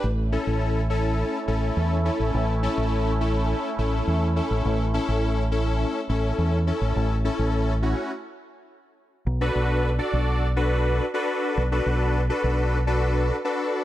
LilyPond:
<<
  \new Staff \with { instrumentName = "Analog polysynth" } { \time 4/4 \key a \mixolydian \tempo 4 = 104 r8 <cis' e' a'>8. r16 <cis' e' a'>8. r16 <cis' e' a'>8. r16 <cis' e' a'>8~ | <cis' e' a'>16 r16 <cis' e' a'>8. r16 <cis' e' a'>8. r16 <cis' e' a'>8. r16 <cis' e' a'>8~ | <cis' e' a'>16 r16 <cis' e' a'>8. r16 <cis' e' a'>8. r16 <cis' e' a'>8. r16 <cis' e' a'>8~ | <cis' e' a'>16 r16 <cis' e' a'>8. r16 <cis' e' fis'>8 r2 |
r16 <d' fis' a' b'>8. r16 <d' fis' a' d''>8. r16 <d' fis' a' b'>8. r16 <d' fis' a' b'>8. | r16 <d' fis' a' b'>8. r16 <d' fis' a' b'>8. r16 <d' fis' a' b'>8. r16 <d' fis' a' b'>8. | }
  \new Staff \with { instrumentName = "Supersaw synth" } { \time 4/4 \key a \mixolydian <a cis' e'>1~ | <a cis' e'>1~ | <a cis' e'>1~ | <a cis' e'>2 r2 |
r1 | r1 | }
  \new Staff \with { instrumentName = "Fingered electric bass" } { \clef bass \time 4/4 \key a \mixolydian a,,8. a,,4.~ a,,16 a,,8 e,8. a,,16 | a,,8. a,,4.~ a,,16 a,,8 e,8. a,,16 | a,,8. a,,4.~ a,,16 a,,8 e,8. a,,16 | a,,8. a,,4~ a,,16 r2 |
b,,8 b,,4 b,,2 r8 | b,,8 b,,4 b,,2 r8 | }
>>